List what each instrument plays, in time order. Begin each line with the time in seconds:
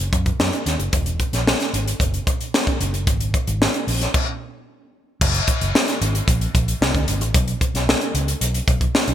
0.13 fingered electric bass F#2, kick, closed hi-hat
0.26 kick, closed hi-hat
0.40 fingered electric bass F#2, snare
0.53 closed hi-hat
0.66 fingered electric bass D#2, snare, closed hi-hat
0.79 fingered electric bass F#1, closed hi-hat
0.93 fingered electric bass E1, kick, closed hi-hat
1.06 closed hi-hat
1.20 kick, closed hi-hat
1.33 fingered electric bass A#1, snare, closed hi-hat
1.47 snare
1.60 snare, closed hi-hat
1.73 fingered electric bass G#1, closed hi-hat
1.88 closed hi-hat
2.00 fingered electric bass F#1, kick, closed hi-hat
2.14 closed hi-hat
2.27 kick, closed hi-hat
2.41 closed hi-hat
2.54 snare
2.67 kick, closed hi-hat
2.80 fingered electric bass F#1, closed hi-hat
2.94 closed hi-hat
3.07 fingered electric bass G#1, kick, closed hi-hat
3.20 closed hi-hat
3.34 kick, closed hi-hat
3.47 fingered electric bass G#1, closed hi-hat
3.62 snare
3.74 closed hi-hat
3.87 fingered electric bass A#1, open hi-hat
4.01 snare, closed hi-hat
4.14 kick, crash
5.21 fingered electric bass F#1, kick, crash
5.34 closed hi-hat
5.48 kick, closed hi-hat
5.61 fingered electric bass F#1, closed hi-hat
5.75 snare
5.88 snare, closed hi-hat
6.01 fingered electric bass G#1, closed hi-hat
6.15 closed hi-hat
6.28 fingered electric bass A#1, kick, closed hi-hat
6.41 closed hi-hat
6.55 fingered electric bass A#1, kick, closed hi-hat
6.68 closed hi-hat
6.81 fingered electric bass C2, snare
6.94 fingered electric bass D2, kick, closed hi-hat
7.08 fingered electric bass G1, closed hi-hat
7.21 fingered electric bass A1, closed hi-hat
7.34 fingered electric bass B1, kick, closed hi-hat
7.48 closed hi-hat
7.61 kick, closed hi-hat
7.74 fingered electric bass B1, snare, closed hi-hat
7.89 snare
8.01 closed hi-hat
8.14 fingered electric bass C#2, closed hi-hat
8.28 closed hi-hat
8.41 fingered electric bass B1, closed hi-hat
8.54 closed hi-hat
8.68 fingered electric bass B1, kick, closed hi-hat
8.81 kick, closed hi-hat
8.95 snare
9.07 fingered electric bass B1, closed hi-hat